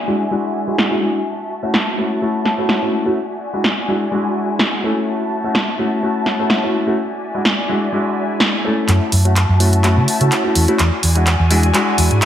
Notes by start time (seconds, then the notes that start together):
Already playing: F#4 D5 E5 G#5
0.07 G#3 D4 E4 F#4
0.31 G#3 D4 E4 F#4
0.67 G#3 D4 E4 F#4
0.79 snare
0.91 G#3 D4 E4 F#4
1.02 G#3 D4 E4 F#4
1.27 A5
1.62 A3 C#4 E4 F#4
1.74 snare
1.98 A3 C#4 E4 F#4
2.22 A3 C#4 E4 F#4
2.46 snare
2.58 A3 C#4 E4 F#4
2.69 snare
2.82 A3 C#4 E4 F#4
3.06 A3 C#4 E4 F#4
3.17 D5 G#5
3.53 G#3 D4 E4 F#4
3.64 snare
3.88 G#3 D4 E4 F#4
4.11 G#3 D4 E4 F#4
4.59 snare
4.83 A3 C#4 E4 A4
5.08 E5 A5
5.44 A3 C#4 E4 F#4
5.55 snare
5.79 A3 C#4 E4 F#4
6.03 A3 C#4 E4 F#4
6.26 snare
6.39 A3 C#4 E4 F#4
6.50 snare
6.63 A3 C#4 E4 F#4
6.87 A3 C#4 E4 F#4
6.98 D5 E5 G#5
7.34 G#3 D4 E4 F#4
7.45 snare
7.69 G#3 D4 E4 F#4
7.92 G#3 D4 E4 F#4
8.40 snare
8.64 A3 C#4 E4 A4
8.89 F#2 F#4 E5 A5, clap, closed hi-hat
9.12 F#2, open hi-hat
9.25 A3 C#4 E4 F#4, closed hi-hat
9.36 clap, closed hi-hat
9.49 F#2
9.60 A3 C#4 E4 F#4, open hi-hat
9.73 closed hi-hat
9.83 A3 C#4 E4 F#4, clap, closed hi-hat
9.97 C#3
10.08 open hi-hat
10.20 C#3 A3 C#4 E4 F#4, closed hi-hat
10.32 clap, closed hi-hat
10.44 A3 C#4 E4 F#4
10.55 E2, open hi-hat
10.68 A3 C#4 E4 F#4, closed hi-hat
10.79 E2 F#4 D5 G#5, clap, closed hi-hat
11.03 E2, open hi-hat
11.15 G#3 D4 E4 F#4, closed hi-hat
11.27 clap, closed hi-hat
11.40 E2
11.50 G#3 D4 E4 F#4, open hi-hat
11.63 closed hi-hat
11.74 G#3 D4 E4 F#4, clap, closed hi-hat
11.98 E2, open hi-hat
12.11 G#2, closed hi-hat
12.22 clap, closed hi-hat